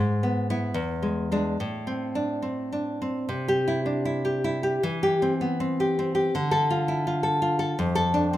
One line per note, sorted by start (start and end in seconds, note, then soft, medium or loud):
0.00 0.73 G#2 medium
0.23 0.49 B3 soft
0.50 0.74 B3 soft
0.50 0.73 E4 medium
0.74 1.56 E2 medium
1.02 1.30 G#3 soft
1.32 1.56 G#3 soft
1.32 1.57 D4 medium
1.60 3.24 A2 medium
1.87 2.41 C4 soft
2.15 2.44 D4 soft
2.42 3.00 C4 soft
2.73 3.28 D4 soft
3.02 3.28 C4 soft
3.29 4.77 C3 medium
3.48 3.79 G4 medium
3.68 4.04 E4 soft
3.86 4.81 D4 soft
4.05 4.43 E4 soft
4.25 4.62 G4 soft
4.44 4.82 E4 medium
4.63 4.82 G4 soft
4.83 6.29 E3 medium
5.03 5.32 G4 medium
5.22 5.59 C4 soft
5.41 6.33 B3 soft
5.60 5.98 C4 medium
5.80 6.14 G4 soft
5.99 6.34 C4 medium
6.15 6.33 G4 medium
6.35 7.74 D3 medium
6.51 6.80 A4 medium
6.70 7.06 F4 medium
6.88 7.23 E4 soft
7.07 7.41 F4 medium
7.23 7.58 A4 medium
7.42 7.77 F4 medium
7.59 7.77 A4 medium
7.79 8.37 F2 medium
7.95 8.24 A4 medium
8.14 8.37 D4 medium
8.33 8.37 C4 soft